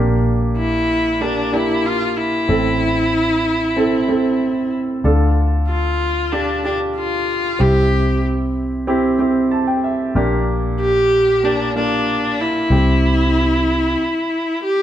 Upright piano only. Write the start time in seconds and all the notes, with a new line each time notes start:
Already playing: A#2 A#3 D4 G4
1.20 A#3 D4 G4
1.52 A#3 D4 G4
2.48 A2 C4 E4 A4
3.76 C4 E4 A4
4.09 C4 E4 A4
5.04 D3 D4 F4 A4
6.32 D4 F4 G4
6.64 D4 F4 G4
7.59 C3 C4 E4 G4
8.87 C4 E4 G4
9.19 C4 E4 G4
9.51 A5
9.67 G5
9.84 E5
10.15 A#2 A#3 D4 G4
11.43 A#3 D4 G4
11.75 A#3 D4 F4
12.71 C3 C4 E4 G4